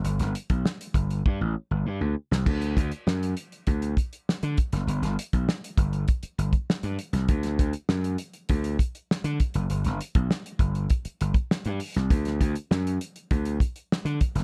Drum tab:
CC |----------------|x---------------|----------------|----------------|
HH |xxxx-xxx--------|-xxx-xxxxxxx-xxx|xxxx-xxxxxxx-xxx|xxxx-xxxxxxx-xxx|
SD |-o--o----------o|----o-------o--o|-o--o-------o--o|-o--o-------o---|
BD |---o--o-o-------|o-o-----o-o---o-|---o--o-o--o----|o-o-----o-o---o-|

CC |----------------|----------------|
HH |xxxx-xxxxxxx-xox|xxxx-xxxxxxx-xxx|
SD |-o--o-------o--o|-o--o-------o--o|
BD |---o--o-o--o----|o-o-----o-o---o-|